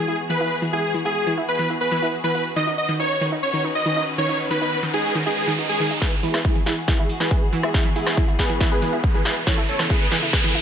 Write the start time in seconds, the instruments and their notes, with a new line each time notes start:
Already playing: string section E3 B3 F#4 G#4, supersaw synth G#4
0.08 synth pluck E4
0.30 synth pluck E3, supersaw synth B4
0.41 synth pluck E4
0.62 synth pluck E3
0.73 synth pluck E4, supersaw synth G#4
0.94 synth pluck E3
1.05 synth pluck E4, supersaw synth G#4
1.27 synth pluck E3
1.38 synth pluck E4
1.48 supersaw synth B4
1.59 synth pluck E3
1.70 synth pluck E4
1.81 supersaw synth B4
1.92 synth pluck E3
2.02 synth pluck E4
2.24 synth pluck E3, supersaw synth B4
2.35 synth pluck E4
2.56 string section D#3 C#4 B4, synth pluck D#3, supersaw synth D#5, riser
2.67 synth pluck D#4
2.78 supersaw synth D#5
2.89 synth pluck D#3
3.00 synth pluck D#4, supersaw synth C#5
3.21 synth pluck D#3
3.32 synth pluck D#4
3.43 supersaw synth C#5
3.54 synth pluck D#3
3.64 synth pluck D#4
3.75 supersaw synth D#5
3.86 synth pluck D#3
3.97 synth pluck D#4
4.18 synth pluck D#3, supersaw synth C#5
4.29 synth pluck D#4
4.51 synth pluck D#3, supersaw synth B4
4.61 synth pluck D#4
4.83 synth pluck D#3
4.94 synth pluck D#4, supersaw synth G#4
5.15 synth pluck D#3
5.26 synth pluck D#4, supersaw synth G#4
5.48 synth pluck D#3
5.58 synth pluck D#4
5.69 supersaw synth G#4
5.80 synth pluck D#3
5.91 synth pluck D#4
6.02 string section E3 B3 F#4 G#4, synth pluck E4, supersaw synth G#4 B4, kick, snare, closed hi-hat, riser
6.23 synth pluck E3, supersaw synth G#4 B4, open hi-hat
6.34 synth pluck E4, cross-stick, snare, closed hi-hat
6.45 supersaw synth E4 G#4, kick, closed hi-hat
6.56 synth pluck E3
6.66 synth pluck E4, snare, open hi-hat
6.77 closed hi-hat
6.88 synth pluck E3, supersaw synth E4 G#4, kick, snare, closed hi-hat
6.99 synth pluck E4
7.10 open hi-hat
7.20 synth pluck E3, supersaw synth G#4 B4, snare, closed hi-hat
7.31 synth pluck E4, kick, closed hi-hat
7.53 synth pluck E3, open hi-hat
7.63 synth pluck E4, supersaw synth E4 G#4, cross-stick, closed hi-hat
7.74 kick, snare, closed hi-hat
7.85 synth pluck E3
7.96 supersaw synth E4 G#4, synth pluck E4, open hi-hat
8.07 cross-stick, snare, closed hi-hat
8.17 synth pluck E3, kick, closed hi-hat
8.28 synth pluck E4
8.39 supersaw synth G#4 B4, kick, snare, open hi-hat
8.50 synth pluck E3, closed hi-hat
8.61 synth pluck E4, kick, snare, closed hi-hat
8.71 supersaw synth G#4 B4
8.82 synth pluck E3, open hi-hat
8.93 synth pluck E4, closed hi-hat
9.04 kick, closed hi-hat
9.14 synth pluck E3, supersaw synth G#4 B4
9.25 synth pluck E4, snare, open hi-hat
9.36 closed hi-hat
9.47 string section C#3 E4 A4, synth pluck E3, supersaw synth A4 C#5, kick, snare, closed hi-hat
9.58 synth pluck E4
9.68 supersaw synth A4 C#5, open hi-hat
9.79 synth pluck E3, cross-stick, snare, closed hi-hat
9.90 synth pluck E4, supersaw synth G#4 B4, kick, closed hi-hat
10.12 synth pluck E3, snare, open hi-hat
10.22 synth pluck E4, closed hi-hat
10.33 supersaw synth G#4 B4, kick, snare, closed hi-hat
10.44 synth pluck E3
10.55 synth pluck E4, open hi-hat